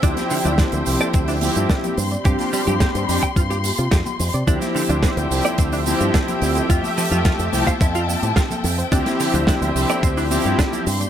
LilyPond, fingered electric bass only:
\new Staff \with { instrumentName = "Fingered electric bass" } { \clef bass \time 4/4 \key d \minor \tempo 4 = 108 d,16 r8 d,16 r16 d,16 c,16 r16 d,8 r16 g,16 r8 g,16 r16 | g,16 r8 g,16 r16 g,16 f,16 r16 g,8 r16 c16 f,16 r16 f,16 c16 | d,16 r8 d,16 r16 d,16 c,16 r16 d,8 r16 g,16 r8 d,16 r16 | f,16 r8 f,16 r16 f,16 c,16 r16 f,8 r16 a,16 r8 f,16 r16 |
d,16 r8 d,16 r16 d,16 c,16 r16 d,8 r16 g,16 r8 g,16 r16 | }